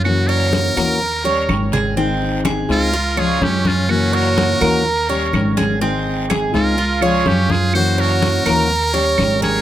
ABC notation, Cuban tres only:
X:1
M:4/4
L:1/8
Q:1/4=125
K:Ab
V:1 name="Cuban tres"
z d2 B2 d2 A | C2 A2 F d2 z | z d2 B2 d2 A | C2 A2 F d2 z |
z d2 B2 d2 A |]